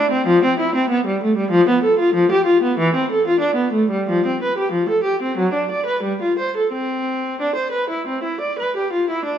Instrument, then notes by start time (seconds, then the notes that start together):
viola
Already playing: D4
0.11 C4
0.27 F3
0.45 C4
0.59 E4
0.75 C4
0.90 B3
1.06 G3
1.23 A3
1.37 G3
1.50 F3
1.69 B3
1.83 A4
1.99 F4
2.14 F3
2.31 G4
2.46 F4
2.63 B3
2.79 E3
2.95 C4
3.11 A4
3.27 F4
3.40 D4
3.55 B3
3.72 A3
3.90 G3
4.09 F3
4.26 C4
4.42 B4
4.58 G4
4.72 F3
4.89 A4
5.03 G4
5.22 C4
5.38 F#3
5.53 D4
5.71 D5
5.86 B4
6.03 G3
6.22 F4
6.39 C5
6.57 A4
6.72 C4
7.41 D4
7.55 C5
7.71 B4
7.90 E4
8.07 C4
8.23 E4
8.41 D5
8.59 B4
8.77 G4
8.92 F4
9.10 E4
9.25 D4